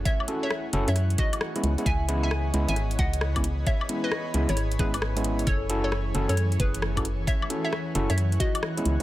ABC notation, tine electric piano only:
X:1
M:4/4
L:1/16
Q:"Swing 16ths" 1/4=133
K:F#dor
V:1 name="Tine electric piano"
z2 [CEFA]2 z2 [CEFA] z6 [G,B,CE]2 [G,B,CE] | z2 [G,B,CE]2 z2 [G,B,CE]2 z4 z [G,B,CE] z2 | z2 [G,B,CE]2 z2 [G,B,CE] z3 [G,B,CE] z2 [G,B,CE]3 | z2 [CEFA]2 z2 [CEFA]2 z4 z [CEFA] z2 |
z2 [CEFA]2 z2 [CEFA] z6 [G,B,CE]2 z |]